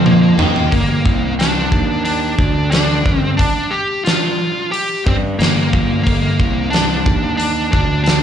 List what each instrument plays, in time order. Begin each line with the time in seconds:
Already playing: fingered electric bass F2, overdriven electric guitar F3, tonewheel organ A#3 D#4 C5
0.06 lead electric guitar A#3, mid tom
0.38 fingered electric bass D#2, overdriven electric guitar D#3, floor tom
0.56 floor tom
0.71 fingered electric bass G1, lead electric guitar A#3, kick, open hi-hat
1.06 fingered electric bass C2, kick
1.39 lead electric guitar D4, snare, open hi-hat
1.72 fingered electric bass D#2, kick
2.04 lead electric guitar D4, open hi-hat
2.38 fingered electric bass D2, kick
2.71 lead electric guitar D4, snare, open hi-hat
3.06 fingered electric bass G1, kick
3.19 lead electric guitar C4
3.37 lead electric guitar D4, kick, open hi-hat
3.71 lead electric guitar G4
4.05 lead electric guitar F4, snare, open hi-hat
4.72 lead electric guitar G4, open hi-hat
5.06 fingered electric bass G2, lead electric guitar C4, kick
5.39 fingered electric bass G1, lead electric guitar A#3, snare, open hi-hat
5.73 fingered electric bass G1, kick
6.03 lead electric guitar A#3, kick, open hi-hat
6.07 fingered electric bass G1
6.40 fingered electric bass C2, kick
6.70 lead electric guitar D4, open hi-hat
6.74 snare
7.06 fingered electric bass D#2, kick
7.37 lead electric guitar D4, open hi-hat
7.72 fingered electric bass D2, lead electric guitar D4, kick
8.04 lead electric guitar D4, snare, open hi-hat